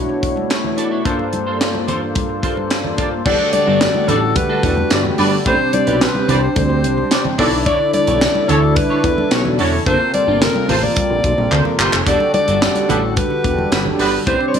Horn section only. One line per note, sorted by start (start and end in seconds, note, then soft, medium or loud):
4.08 4.17 D4 medium
4.08 4.17 A4 medium
4.08 4.17 B4 medium
4.08 4.17 D5 loud
4.91 5.03 D4 medium
4.91 5.03 A4 medium
4.91 5.03 B4 medium
4.91 5.03 D5 loud
5.18 5.36 D4 loud
5.18 5.36 A4 medium
5.18 5.36 B4 medium
5.18 5.36 D5 loud
6.28 6.37 D4 loud
6.28 6.37 G4 medium
6.28 6.37 B4 medium
6.28 6.37 D5 loud
7.11 7.23 D4 medium
7.11 7.23 G4 medium
7.11 7.23 B4 medium
7.11 7.23 D5 loud
7.39 7.56 D4 loud
7.39 7.56 F#4 loud
7.39 7.56 A4 loud
7.39 7.56 D5 loud
8.48 8.57 C#4 loud
8.48 8.57 F#4 medium
8.48 8.57 A4 loud
8.48 8.57 C#5 loud
9.31 9.43 C#4 medium
9.31 9.43 F#4 medium
9.31 9.43 A4 medium
9.31 9.43 C#5 loud
9.59 9.77 C#4 loud
9.59 9.76 F#4 loud
9.59 9.76 A4 medium
9.59 9.77 C#5 loud
10.69 10.78 C4 medium
10.69 10.78 F4 medium
10.69 10.78 A4 medium
10.69 10.78 C5 loud
11.51 11.63 C4 medium
11.51 11.63 F4 medium
11.51 11.63 A4 medium
11.51 11.63 C5 medium
11.78 12.14 C4 loud
11.78 12.14 G4 loud
11.78 12.14 A4 loud
11.78 12.14 C5 loud
12.88 12.97 B3 medium
12.88 12.97 G4 loud
12.88 12.97 B4 medium
13.71 13.83 B3 medium
13.71 13.83 G4 medium
13.71 13.83 B4 loud
13.99 14.17 B3 medium
13.99 14.17 G4 medium
13.99 14.17 B4 loud